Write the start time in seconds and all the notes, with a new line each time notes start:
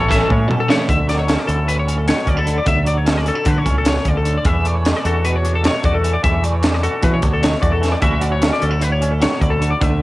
Already playing: A1 A2 E3 E4 F#4 A4 C#5
0.09 E3 A3 C#4 E4 E5, kick, snare, closed hi-hat
0.20 A4
0.28 A2 C#5, muted overdriven electric guitar stroke, kick
0.48 B2 A4, muted overdriven electric guitar stroke, mid tom
0.60 A4
0.69 C#3 E3 A3 C#4 E4 C#5, snare
0.87 D2 D3 E5, kick, closed hi-hat
1.07 F#3 D5, snare, closed hi-hat
1.19 C#5
1.27 C#4, snare, closed hi-hat
1.39 D5
1.47 D2 E4 A4, closed hi-hat
1.67 A2 B4, closed hi-hat
1.79 C#5
1.87 C#4, closed hi-hat
1.98 A4
2.07 F#3 C#5, snare, closed hi-hat
2.26 D2 C#4 D5, kick, closed hi-hat
2.37 E4 A4
2.47 D3, closed hi-hat
2.58 D5
2.66 D2 D3 E5, kick, closed hi-hat
2.85 F#3 D5, closed hi-hat
2.98 C#5
3.06 C#4, snare, closed hi-hat
3.17 D5
3.25 C#4 A4, closed hi-hat
3.35 E4
3.45 A2 D3 B4, kick, closed hi-hat
3.58 C#5
3.66 C#2 C#4, kick, closed hi-hat
3.78 A4
3.85 B2 C#5, snare, closed hi-hat
4.05 D2 C#3 D5, kick, closed hi-hat
4.17 A4
4.25 D3, closed hi-hat
4.37 D5
4.45 E2 E3 E5, kick, closed hi-hat
4.65 A3 D5, closed hi-hat
4.76 C#5
4.85 D4, snare, closed hi-hat
4.96 D5
5.05 E2 F#4 A4, closed hi-hat
5.25 B2 B4, closed hi-hat
5.36 C#5
5.45 D4, closed hi-hat
5.55 A4
5.63 A3 C#5, snare, closed hi-hat
5.84 E2 F#4 D5, kick, closed hi-hat
5.94 A4
6.04 E3, closed hi-hat
6.13 D5
6.23 E2 E3 E5, kick, closed hi-hat
6.43 A3 D5, closed hi-hat
6.54 C#5
6.63 D4, snare, closed hi-hat
6.74 D5
6.83 F#4 A4, closed hi-hat
7.02 B2 E3 B4, kick, closed hi-hat
7.14 C#5
7.22 D2 D4, kick, closed hi-hat
7.33 A4
7.42 A3 C#5, snare, closed hi-hat
7.62 E2 F#4 D5, kick, closed hi-hat
7.72 A4
7.81 E3, snare, closed hi-hat
7.92 D5
8.00 D2 D3 F#3 C#4 E4 F#4 E5, kick, closed hi-hat
8.21 F#3 D5, closed hi-hat
8.32 C#5
8.42 C#4, snare, closed hi-hat
8.53 D5
8.62 D2 C#4 A4, closed hi-hat
8.71 E4
8.81 A2 B4, closed hi-hat
8.92 C#5
9.02 C#4, closed hi-hat
9.12 A4
9.20 F#3 C#5, snare, closed hi-hat
9.41 D2 E4 D5, kick, closed hi-hat
9.50 A4
9.61 D3, closed hi-hat
9.71 D5
9.81 D2 D3 E5, kick, closed hi-hat